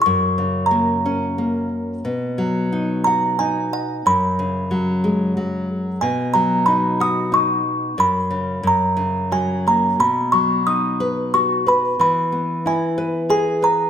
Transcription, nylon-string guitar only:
0.06 2.02 F#2 medium
0.38 1.68 C#3 soft
0.71 1.37 A#3 soft
1.06 2.03 C#4 medium
1.38 2.03 A#3 soft
2.05 4.02 B2 medium
2.38 3.68 F#3 soft
2.72 3.39 D#4 soft
3.07 4.03 F#4 medium
3.40 4.04 D#4 soft
4.06 5.99 F#2 medium
4.39 5.67 C#3 medium
4.71 5.36 F#3 medium
5.04 6.00 G#3 medium
5.37 6.01 F#3 medium
6.02 7.93 B2 medium
6.35 7.61 F#3 medium
6.68 7.31 D#4 medium
7.00 7.95 F#4 medium
7.32 7.96 D#4 soft
7.98 8.62 F#2 medium
8.31 8.63 C#3 soft
8.63 9.96 F#2 medium
8.97 9.96 C#3 soft
9.32 9.98 F#3 soft
9.67 9.99 A#3 soft
10.00 11.96 B2 medium
10.33 11.63 F#3 soft
10.67 11.96 D#4 soft
11.00 11.65 B4 medium
11.34 11.98 F#4 soft
11.66 11.99 B4 soft
11.99 13.90 E3 medium
12.32 13.58 B3 soft
12.66 13.90 E4 soft
12.98 13.61 B4 medium
13.30 13.90 G#4 medium
13.62 13.90 B4 medium

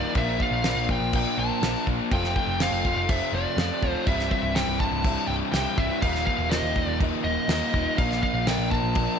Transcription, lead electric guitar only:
0.00 0.12 D5 medium
0.18 0.42 E5 loud
0.42 0.87 F5 loud
0.91 1.15 G5 loud
1.16 1.39 G5 medium
1.39 1.84 A5 loud
2.13 2.35 G5 loud
2.37 2.61 G5 medium
2.62 2.97 F5 medium
2.98 3.10 F5 medium
3.10 3.34 E5 medium
3.34 3.90 D5 medium
3.90 4.07 C5 medium
4.08 4.31 E5 loud
4.32 4.57 E5 loud
4.55 4.80 G5 loud
4.80 5.26 A5 loud
5.27 5.34 G5 loud
5.52 5.78 G5 loud
5.78 6.01 E5 loud
6.02 6.25 F5 loud
6.26 6.50 F5 medium
6.51 6.85 D#5 medium
6.85 6.97 D5 medium
7.24 7.98 D#5 medium
7.98 8.22 F5 loud
8.23 8.48 F5 loud
8.47 8.71 G5 loud
8.71 9.19 A5 loud

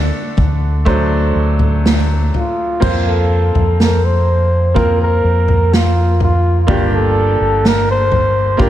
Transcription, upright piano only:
0.00 0.34 D3 medium
0.00 0.76 A3 medium
0.00 0.77 D4 medium
0.00 0.77 F#4 medium
0.00 0.77 A4 medium
0.85 2.72 F#3 medium
0.85 2.72 A3 medium
0.85 2.72 D4 medium
0.85 2.73 C5 medium
2.80 4.65 A#3 medium
2.80 4.65 C4 medium
2.80 4.66 F4 medium
2.80 4.66 C5 medium
4.74 6.58 A#3 medium
4.74 6.58 C4 medium
4.74 6.58 F4 medium
4.74 6.58 A#4 medium
6.67 8.07 G2 medium
6.67 8.49 A#3 medium
6.67 8.49 D4 medium
6.67 8.49 F4 medium
6.67 8.50 G4 medium
8.57 8.69 A#3 medium
8.57 8.69 D4 medium
8.57 8.69 F4 medium
8.57 8.69 G4 medium

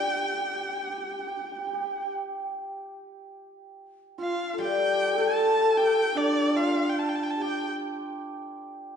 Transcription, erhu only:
0.00 2.13 G5 medium
4.21 4.57 F5 medium
4.61 5.22 G5 loud
5.21 5.79 A5 medium
5.77 6.19 G5 loud
6.17 6.58 D5 loud
6.57 6.91 F5 medium
6.90 7.00 G5 medium
6.99 7.10 A5 medium
7.09 7.17 G5 medium
7.15 7.25 A5 medium
7.23 7.32 G5 medium
7.30 7.43 A5 medium
7.41 7.70 G5 medium

